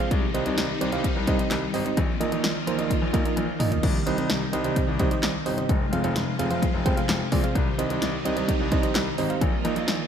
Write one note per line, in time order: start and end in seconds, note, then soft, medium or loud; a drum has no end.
0.00 1.93 C3 medium
0.00 0.11 C4 medium
0.00 0.11 F4 medium
0.00 0.11 G#4 medium
0.00 0.11 C5 medium
0.00 0.11 F5 medium
0.00 closed hi-hat medium
0.11 0.22 C2 loud
0.11 5.65 D#3 medium
0.11 1.95 G3 medium
0.11 1.95 D#4 medium
0.11 kick loud
0.11 closed hi-hat medium
0.34 0.45 C2 loud
0.34 0.44 C4 medium
0.34 0.44 D#4 medium
0.34 0.44 G4 medium
0.34 0.44 C5 medium
0.34 0.44 D#5 loud
0.34 closed hi-hat medium
0.46 0.56 C2 loud
0.46 0.66 C4 medium
0.46 0.66 D#4 medium
0.46 0.66 G4 medium
0.46 0.66 C5 medium
0.46 0.66 D#5 medium
0.46 closed hi-hat medium
0.58 0.68 C2 loud
0.58 snare loud
0.58 closed hi-hat medium
0.81 0.91 C2 loud
0.81 0.91 C4 medium
0.81 0.91 D#4 medium
0.81 0.91 G4 medium
0.81 0.91 C5 medium
0.81 0.91 D5 loud
0.81 closed hi-hat medium
0.92 1.03 C2 loud
0.92 1.12 C4 medium
0.92 1.12 D#4 medium
0.92 1.12 G4 medium
0.92 1.12 C5 medium
0.92 1.12 F5 medium
0.92 closed hi-hat medium
1.04 kick medium
1.04 closed hi-hat medium
1.16 1.26 C2 loud
1.27 1.38 C2 loud
1.27 1.37 C4 medium
1.27 1.37 D#4 medium
1.27 1.37 G4 medium
1.27 1.37 C5 medium
1.27 1.37 D#5 loud
1.27 kick loud
1.27 closed hi-hat medium
1.39 1.59 C4 medium
1.39 1.59 D#4 medium
1.39 1.59 G4 medium
1.39 1.59 C5 medium
1.39 1.59 D#5 medium
1.39 closed hi-hat medium
1.51 1.61 C2 loud
1.51 snare loud
1.51 clap loud
1.51 closed hi-hat medium
1.74 1.85 G#1 loud
1.74 1.84 C4 medium
1.74 1.84 D#4 medium
1.74 1.84 G4 medium
1.74 1.84 C5 medium
1.74 1.84 D#5 loud
1.74 open hi-hat medium
1.86 1.97 C4 medium
1.86 1.97 D#4 medium
1.86 1.97 G4 medium
1.86 1.97 C5 medium
1.86 1.97 D#5 medium
1.86 closed hi-hat soft
1.97 2.08 A#1 loud
1.97 3.82 F3 medium
1.97 3.82 A#3 medium
1.97 3.82 F4 medium
1.97 kick loud
1.97 closed hi-hat medium
2.20 2.30 A#1 loud
2.20 2.30 A#3 medium
2.20 2.30 D#4 medium
2.20 2.30 F4 medium
2.20 2.30 A#4 medium
2.20 2.30 D#5 loud
2.20 closed hi-hat medium
2.32 2.42 A#1 loud
2.32 2.52 A#3 medium
2.32 2.52 D#4 medium
2.32 2.52 F4 medium
2.32 2.52 A#4 medium
2.32 2.52 D#5 medium
2.32 closed hi-hat medium
2.44 2.54 A#1 loud
2.44 snare loud
2.44 closed hi-hat medium
2.67 2.77 A#1 medium
2.67 2.77 A#3 medium
2.67 2.77 D#4 medium
2.67 2.77 F4 medium
2.67 2.77 A#4 medium
2.67 2.77 C5 loud
2.67 closed hi-hat medium
2.78 2.89 A#1 medium
2.78 2.98 A#3 medium
2.78 2.98 D#4 medium
2.78 2.98 F4 medium
2.78 2.98 A#4 medium
2.78 2.98 D#5 medium
2.78 closed hi-hat medium
2.90 kick medium
2.90 closed hi-hat medium
3.02 3.12 A#1 medium
3.13 3.24 A#1 loud
3.13 3.23 A#3 medium
3.13 3.23 D#4 medium
3.13 3.23 F4 medium
3.13 3.23 A#4 medium
3.13 3.23 D#5 loud
3.13 kick loud
3.13 closed hi-hat medium
3.25 3.45 A#3 medium
3.25 3.45 D#4 medium
3.25 3.45 F4 medium
3.25 3.45 A#4 medium
3.25 3.45 D#5 medium
3.25 closed hi-hat medium
3.36 3.47 A#1 loud
3.36 closed hi-hat medium
3.36 high tom medium
3.60 3.70 A#1 loud
3.60 3.70 A#3 medium
3.60 3.70 D#4 medium
3.60 3.70 F4 medium
3.60 3.70 A#4 medium
3.60 3.70 D#5 loud
3.60 mid tom medium
3.60 open hi-hat medium
3.72 3.83 A#3 medium
3.72 3.83 D#4 medium
3.72 3.83 F4 medium
3.72 3.83 A#4 medium
3.72 3.83 D#5 medium
3.72 closed hi-hat soft
3.72 floor tom loud
3.83 3.94 C2 loud
3.83 9.38 C3 medium
3.83 5.68 G3 medium
3.83 5.68 D#4 medium
3.83 kick loud
3.83 crash medium
4.06 4.16 C2 loud
4.06 4.16 C4 medium
4.06 4.16 D#4 medium
4.06 4.16 G4 medium
4.06 4.16 C5 medium
4.06 4.16 D#5 medium
4.06 closed hi-hat medium
4.18 4.28 C2 medium
4.18 4.38 C4 medium
4.18 4.38 D#4 medium
4.18 4.38 G4 medium
4.18 4.38 C5 medium
4.18 4.38 D#5 medium
4.18 closed hi-hat medium
4.29 4.40 C2 loud
4.29 snare loud
4.29 closed hi-hat medium
4.53 4.63 C2 loud
4.53 4.63 C4 medium
4.53 4.63 D#4 medium
4.53 4.63 G4 medium
4.53 4.63 C5 medium
4.53 4.63 D#5 loud
4.53 closed hi-hat medium
4.64 4.75 C2 loud
4.64 4.84 C4 medium
4.64 4.84 D#4 medium
4.64 4.84 G4 medium
4.64 4.84 C5 medium
4.64 4.84 D#5 medium
4.64 closed hi-hat medium
4.76 kick medium
4.76 closed hi-hat medium
4.88 4.98 C2 loud
4.99 5.10 C2 loud
4.99 5.09 C4 medium
4.99 5.09 D#4 medium
4.99 5.09 G4 medium
4.99 5.09 C5 medium
4.99 5.09 D#5 loud
4.99 kick loud
4.99 closed hi-hat medium
5.11 5.31 C4 medium
5.11 5.31 D#4 medium
5.11 5.31 G4 medium
5.11 5.31 C5 medium
5.11 5.31 D#5 medium
5.11 closed hi-hat medium
5.23 5.33 C2 loud
5.23 snare loud
5.23 clap loud
5.23 closed hi-hat medium
5.46 5.57 G1 medium
5.46 5.56 C4 medium
5.46 5.56 D#4 medium
5.46 5.56 G4 medium
5.46 5.56 C5 medium
5.46 5.56 D#5 loud
5.46 open hi-hat medium
5.58 5.69 C4 medium
5.58 5.69 D#4 medium
5.58 5.69 G4 medium
5.58 5.69 C5 medium
5.58 5.69 D#5 medium
5.58 closed hi-hat soft
5.69 5.80 F1 loud
5.69 7.53 F3 medium
5.69 7.53 G#3 medium
5.69 7.53 F4 medium
5.69 kick loud
5.69 closed hi-hat medium
5.92 6.02 F1 loud
5.92 6.02 C4 medium
5.92 6.02 F4 medium
5.92 6.02 G#4 medium
5.92 6.02 C5 medium
5.92 6.02 F5 loud
5.92 closed hi-hat medium
6.04 6.14 F1 loud
6.04 6.24 C4 medium
6.04 6.24 F4 medium
6.04 6.24 G#4 medium
6.04 6.24 C5 medium
6.04 6.24 F5 medium
6.04 closed hi-hat medium
6.16 6.26 F1 medium
6.16 snare loud
6.16 closed hi-hat medium
6.39 6.49 F1 loud
6.39 6.49 C4 medium
6.39 6.49 F4 medium
6.39 6.49 G#4 medium
6.39 6.49 C5 medium
6.39 6.49 F5 loud
6.39 closed hi-hat medium
6.51 6.61 F1 loud
6.51 6.70 C4 medium
6.51 6.70 F4 medium
6.51 6.70 G#4 medium
6.51 6.70 C5 medium
6.51 6.70 F5 medium
6.51 closed hi-hat medium
6.62 kick medium
6.62 closed hi-hat medium
6.74 6.84 F1 loud
6.86 6.96 F1 loud
6.86 6.95 C4 medium
6.86 6.95 F4 medium
6.86 6.95 G#4 medium
6.86 6.95 C5 medium
6.86 6.95 G5 loud
6.86 kick loud
6.86 closed hi-hat medium
6.97 7.17 C4 medium
6.97 7.17 F4 medium
6.97 7.17 G#4 medium
6.97 7.17 C5 medium
6.97 7.17 F5 medium
6.97 closed hi-hat medium
7.09 7.20 F1 loud
7.09 snare loud
7.09 clap loud
7.09 closed hi-hat medium
7.32 7.43 A#1 loud
7.32 7.42 C4 medium
7.32 7.42 F4 medium
7.32 7.42 G#4 medium
7.32 7.42 C5 medium
7.32 7.42 D5 loud
7.32 kick loud
7.32 open hi-hat medium
7.44 7.55 C4 medium
7.44 7.55 F4 medium
7.44 7.55 G#4 medium
7.44 7.55 C5 medium
7.44 7.55 F5 medium
7.44 closed hi-hat medium
7.55 7.66 C2 loud
7.55 10.07 D#3 medium
7.55 9.40 G3 medium
7.55 9.40 D#4 medium
7.55 kick loud
7.55 closed hi-hat medium
7.78 7.89 C2 loud
7.78 7.88 C4 medium
7.78 7.88 D#4 medium
7.78 7.88 G4 medium
7.78 7.88 C5 medium
7.78 7.88 D#5 loud
7.78 closed hi-hat medium
7.90 8.00 C2 loud
7.90 8.10 C4 medium
7.90 8.10 D#4 medium
7.90 8.10 G4 medium
7.90 8.10 C5 medium
7.90 8.10 D#5 medium
7.90 closed hi-hat medium
8.02 8.13 C2 loud
8.02 snare loud
8.02 closed hi-hat medium
8.25 8.35 C2 loud
8.25 8.35 C4 medium
8.25 8.35 D#4 medium
8.25 8.35 G4 medium
8.25 8.35 C5 medium
8.25 8.35 D#5 loud
8.25 closed hi-hat medium
8.37 8.47 C2 loud
8.37 8.56 C4 medium
8.37 8.56 D#4 medium
8.37 8.56 G4 medium
8.37 8.56 C5 medium
8.37 8.56 D#5 medium
8.37 closed hi-hat medium
8.48 kick medium
8.48 closed hi-hat medium
8.60 8.70 C2 loud
8.72 8.82 C2 loud
8.72 8.81 C4 medium
8.72 8.81 D#4 medium
8.72 8.81 G4 medium
8.72 8.81 C5 medium
8.72 8.81 D#5 loud
8.72 kick loud
8.72 closed hi-hat medium
8.83 9.03 C4 medium
8.83 9.03 D#4 medium
8.83 9.03 G4 medium
8.83 9.03 C5 medium
8.83 9.03 D#5 medium
8.83 closed hi-hat medium
8.95 9.06 C2 loud
8.95 snare loud
8.95 clap loud
8.95 closed hi-hat medium
9.18 9.29 G#1 medium
9.18 9.28 C4 medium
9.18 9.28 D#4 medium
9.18 9.28 G4 medium
9.18 9.28 C5 medium
9.18 9.28 D#5 loud
9.18 open hi-hat medium
9.30 9.41 C4 medium
9.30 9.41 D#4 medium
9.30 9.41 G4 medium
9.30 9.41 C5 medium
9.30 9.41 F5 medium
9.30 closed hi-hat soft
9.41 9.52 A#1 loud
9.41 10.07 F3 medium
9.41 10.07 A#3 medium
9.41 10.07 F4 medium
9.41 kick loud
9.41 closed hi-hat medium
9.65 9.75 A#1 loud
9.65 9.74 A#3 medium
9.65 9.74 D#4 medium
9.65 9.74 F4 medium
9.65 9.74 A#4 medium
9.65 9.74 D#5 medium
9.65 closed hi-hat medium
9.76 9.86 A#1 loud
9.76 9.96 A#3 medium
9.76 9.96 D#4 medium
9.76 9.96 F4 medium
9.76 9.96 A#4 medium
9.76 9.96 D#5 medium
9.76 closed hi-hat medium
9.88 9.98 A#1 loud
9.88 snare loud
9.88 closed hi-hat medium